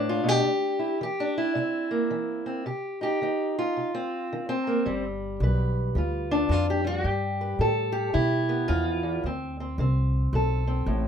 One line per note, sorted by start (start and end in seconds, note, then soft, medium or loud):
0.00 0.23 A2 medium
0.00 0.46 D4 medium
0.00 0.44 B4 soft
0.09 0.29 F4 medium
0.24 0.44 B2 medium
0.29 1.02 G4 medium
0.45 0.96 C3 medium
0.79 1.00 E4 soft
1.01 1.51 E3 medium
1.01 1.37 G4 medium
1.20 1.56 D4 medium
1.38 2.66 E4 medium
1.55 2.06 C3 medium
1.55 2.45 C4 soft
1.91 2.64 A#3 soft
2.11 2.61 E3 medium
2.46 2.64 C4 soft
2.66 3.16 C3 medium
2.66 3.02 G4 soft
3.01 3.21 D#4 soft
3.01 3.57 G4 medium
3.22 3.72 D#3 medium
3.22 3.94 D#4 soft
3.59 4.49 F4 medium
3.77 4.27 C3 medium
3.95 4.48 C4 medium
4.33 4.82 D#3 medium
4.49 5.04 C4 medium
4.67 4.84 A#3 soft
4.86 5.39 G1 medium
4.86 5.36 G2 medium
4.86 6.31 G3 soft
5.40 5.93 B1 medium
5.40 5.92 D3 medium
5.40 7.03 B4 soft
5.95 6.48 D2 medium
5.95 6.46 D3 medium
5.95 6.50 F4 soft
6.31 6.83 D4 medium
6.49 7.02 F2 medium
6.49 7.00 D3 medium
6.49 6.69 F4 medium
6.70 6.86 G4 medium
6.84 8.48 G3 soft
6.84 7.07 F#4 medium
7.04 7.57 G2 medium
7.04 7.55 G2 medium
7.04 7.71 G4 medium
7.41 7.60 B4 soft
7.59 8.12 A2 medium
7.59 8.11 D3 medium
7.59 8.13 A4 medium
7.92 8.68 G4 medium
8.13 8.67 B2 medium
8.13 8.64 D3 medium
8.13 9.23 E4 medium
8.49 9.21 B3 soft
8.68 9.21 E2 medium
8.68 9.03 F2 medium
8.68 9.23 F4 medium
9.03 9.23 E2 medium
9.24 9.76 D2 medium
9.24 9.74 D2 medium
9.24 9.60 C4 soft
9.60 9.80 C4 soft
9.78 10.30 C2 medium
9.78 10.28 D3 medium
9.78 10.66 C4 soft
10.33 10.85 B1 medium
10.33 10.83 A2 medium
10.33 11.08 A4 soft
10.67 11.08 C4 soft
10.86 11.08 A1 medium
10.86 11.08 A2 medium